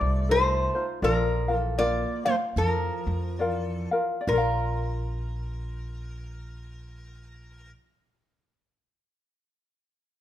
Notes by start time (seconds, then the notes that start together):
Already playing: A3 D#4 F4 A4 C5 D5
0.01 C2
0.29 A3 D#4 F4 A4 C5
0.74 D#4 F4 C5
1.02 A#1 F3 F4 A#4 D5 F5
1.48 F4 A#4 F5
1.54 E3 A4
1.78 A#3 F4 A#4 D5 F5
2.25 A3 F4 C5 F5
2.56 F2 F3 A#4
3.07 F2
3.39 F4 A#4 D5 F5
3.45 E3 A4
3.91 F4 A#4 F5
4.21 D5
4.27 A#1 F4 A#4
4.33 A#4
4.38 F5